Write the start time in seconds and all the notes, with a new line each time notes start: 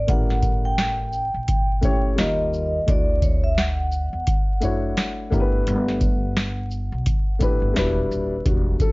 Already playing: D5
0.07 A1 A3 C#4 E4 G4 A#4 F#5, kick, closed hi-hat
0.30 snare
0.43 kick, closed hi-hat, shaker
0.65 G5
0.78 snare, closed hi-hat
1.13 shaker
1.34 A#1
1.48 kick, closed hi-hat
1.81 A3 C#4 E4 G4 C#5, kick, closed hi-hat, shaker
2.16 D#2 G3 A#3 D#4 F4 A#4 D#5, snare, closed hi-hat
2.54 shaker
2.86 D2 A3 D4 E4 F#4 D5, kick, closed hi-hat
3.22 C#5, kick, closed hi-hat, shaker
3.44 E5
3.58 F#5, snare, closed hi-hat
3.92 shaker
4.13 E2
4.27 kick, closed hi-hat
4.60 F#2 A3 D4 E4 F#4 C#5, closed hi-hat, shaker
4.97 snare, closed hi-hat
5.30 G1 A3 D4 E4 G4 A#4, kick, shaker
5.40 B4
5.67 G1, closed hi-hat
5.89 snare
6.01 kick, closed hi-hat, shaker
6.37 snare, closed hi-hat
6.71 shaker
6.92 B1
7.06 kick, closed hi-hat
7.39 A1 A3 D4 E4 G4 B4, kick, closed hi-hat, shaker
7.62 G1
7.74 E1 G3 D4 E4 F#4 B4, snare, closed hi-hat
8.11 D#1, shaker
8.45 E1 G3 D4 F#4, kick, closed hi-hat
8.80 A4, kick, closed hi-hat, shaker